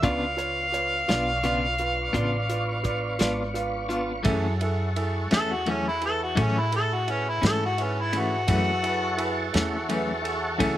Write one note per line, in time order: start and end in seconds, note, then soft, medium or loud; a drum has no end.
0.02 1.06 C#2 medium
0.02 0.24 C#3 medium
0.02 4.22 B3 medium
0.02 0.25 B3 medium
0.02 4.22 D4 medium
0.02 0.25 D4 medium
0.02 0.29 F4 medium
0.02 4.22 F4 medium
0.02 0.25 F4 medium
0.02 0.30 B4 medium
0.02 4.23 C#5 medium
0.02 0.30 D5 medium
0.02 3.57 F5 medium
0.02 kick loud
0.02 closed hi-hat medium
0.37 0.64 F4 medium
0.37 0.65 B4 soft
0.37 0.65 C#5 medium
0.37 closed hi-hat medium
0.72 1.00 F4 medium
0.72 1.00 B4 soft
0.72 1.00 C#5 medium
0.72 closed hi-hat soft
1.08 2.12 B1 medium
1.08 1.31 B3 soft
1.08 1.30 D4 soft
1.08 1.35 F4 medium
1.08 1.30 F4 medium
1.08 1.36 B4 medium
1.08 1.36 D5 medium
1.08 snare medium
1.08 closed hi-hat medium
1.43 1.65 C#3 medium
1.43 1.66 B3 medium
1.43 1.66 D4 medium
1.43 1.71 F4 medium
1.43 1.66 F4 medium
1.43 1.71 B4 medium
1.43 1.71 D5 medium
1.43 closed hi-hat medium
1.78 2.06 F4 medium
1.78 2.06 B4 medium
1.78 2.07 F5 medium
1.78 closed hi-hat medium
2.13 3.17 A1 medium
2.13 2.35 C#3 medium
2.13 2.35 B3 medium
2.13 2.36 D4 medium
2.13 2.41 F4 medium
2.13 2.36 F4 medium
2.13 2.41 B4 medium
2.13 2.42 D5 medium
2.13 kick medium
2.13 closed hi-hat medium
2.49 2.76 F4 medium
2.49 2.76 B4 medium
2.49 2.77 D5 medium
2.49 closed hi-hat medium
2.83 3.11 F4 medium
2.83 3.11 B4 medium
2.83 3.12 D5 medium
2.83 kick medium
2.83 closed hi-hat medium
3.19 4.23 G#1 medium
3.19 3.43 B3 soft
3.19 3.42 D4 soft
3.19 3.46 F4 medium
3.19 3.42 F4 soft
3.19 3.47 B4 medium
3.19 3.47 D5 medium
3.19 snare medium
3.19 closed hi-hat medium
3.54 3.82 F4 medium
3.54 3.82 B4 medium
3.54 3.82 F5 medium
3.54 closed hi-hat medium
3.89 4.12 B3 soft
3.89 4.11 D4 medium
3.89 4.11 F4 medium
3.89 4.17 F4 medium
3.89 4.17 B4 soft
3.89 4.18 F5 medium
3.89 closed hi-hat medium
4.23 4.46 F#2 medium
4.23 5.29 F#2 medium
4.23 4.46 E3 medium
4.23 4.46 A3 medium
4.23 4.47 C#4 loud
4.23 4.52 E4 medium
4.23 8.44 E4 medium
4.23 8.44 F#4 medium
4.23 4.53 G#4 medium
4.23 8.44 A4 medium
4.23 4.53 A4 medium
4.23 8.44 C#5 medium
4.23 kick loud
4.23 ride medium
4.61 4.88 E4 medium
4.61 4.88 G#4 medium
4.61 4.89 A4 medium
4.61 ride medium
4.96 5.23 E4 medium
4.96 5.23 G#4 medium
4.96 5.24 A4 medium
4.96 ride medium
5.31 6.34 E2 medium
5.31 5.54 E3 soft
5.31 5.54 A3 soft
5.31 5.53 C#4 soft
5.31 5.58 E4 medium
5.31 5.59 G#4 soft
5.31 5.59 A4 medium
5.31 5.54 A4 loud
5.31 snare medium
5.31 ride medium
5.53 5.72 F#4 medium
5.66 5.88 F#2 medium
5.66 5.88 E3 soft
5.66 5.88 A3 medium
5.66 5.89 C#4 medium
5.66 5.94 E4 medium
5.66 5.94 G#4 medium
5.66 5.94 A4 medium
5.66 ride soft
5.70 5.86 C#4 medium
5.88 6.03 E4 medium
6.02 6.29 E4 soft
6.02 6.29 G#4 soft
6.02 6.21 A4 medium
6.02 6.29 B4 medium
6.02 ride soft
6.23 6.43 F#4 medium
6.35 6.58 F#2 medium
6.35 7.40 A2 medium
6.35 6.58 E3 medium
6.35 6.59 A3 medium
6.35 6.59 C#4 medium
6.35 6.64 E4 medium
6.35 6.64 G#4 soft
6.35 6.64 A4 medium
6.35 kick medium
6.35 ride medium
6.41 6.61 C#4 medium
6.59 6.74 E4 medium
6.72 6.99 E4 medium
6.72 6.99 G#4 soft
6.72 7.00 A4 medium
6.72 ride medium
6.76 6.96 A4 medium
6.94 7.12 F#4 medium
7.07 7.30 C#4 medium
7.07 7.34 E4 medium
7.07 7.34 G#4 soft
7.07 7.35 B4 medium
7.07 ride soft
7.29 7.44 E4 medium
7.42 8.45 G#2 medium
7.42 7.65 E3 soft
7.42 7.64 A3 soft
7.42 7.64 C#4 soft
7.42 7.69 E4 medium
7.42 7.69 G#4 soft
7.42 7.70 A4 medium
7.42 snare loud
7.42 ride medium
7.46 7.61 A4 loud
7.65 7.85 F#4 medium
7.77 8.04 E4 medium
7.77 8.05 G#4 soft
7.77 8.05 B4 medium
7.77 ride medium
7.83 8.02 C#4 medium
8.01 8.20 E4 medium
8.12 8.35 E3 soft
8.12 8.35 A3 soft
8.12 8.34 C#4 medium
8.12 8.39 E4 medium
8.12 8.40 G#4 soft
8.12 8.40 B4 medium
8.12 ride medium
8.19 9.53 F#4 loud
8.47 9.51 F#2 medium
8.47 8.70 F#2 medium
8.47 8.70 E3 medium
8.47 8.71 A3 medium
8.47 8.70 C#4 medium
8.47 8.74 E4 medium
8.47 10.78 E4 medium
8.47 10.78 F#4 medium
8.47 8.75 G#4 medium
8.47 10.78 A4 medium
8.47 8.75 B4 medium
8.47 10.78 C#5 medium
8.47 kick loud
8.47 ride medium
8.83 9.10 E4 medium
8.83 9.10 G#4 medium
8.83 9.11 B4 medium
8.83 ride medium
9.17 9.45 E4 medium
9.17 9.45 G#4 medium
9.17 9.45 B4 medium
9.17 ride medium
9.53 10.57 E2 medium
9.53 9.77 E3 soft
9.53 9.76 A3 soft
9.53 9.76 C#4 medium
9.53 9.80 E4 medium
9.53 9.80 G#4 medium
9.53 9.81 A4 medium
9.53 snare loud
9.53 ride medium
9.88 10.10 F#2 medium
9.88 10.11 E3 medium
9.88 10.11 A3 medium
9.88 10.11 C#4 medium
9.88 10.15 E4 medium
9.88 10.16 G#4 medium
9.88 10.16 B4 medium
9.88 ride medium
10.22 10.50 E4 medium
10.22 10.50 G#4 medium
10.22 10.50 A4 medium
10.22 ride medium
10.58 10.78 C#2 medium
10.58 10.78 F#2 medium
10.58 10.78 E3 medium
10.58 10.78 A3 medium
10.58 10.78 C#4 medium
10.58 10.78 E4 medium
10.58 10.78 G#4 medium
10.58 10.78 A4 medium
10.58 kick medium
10.58 ride medium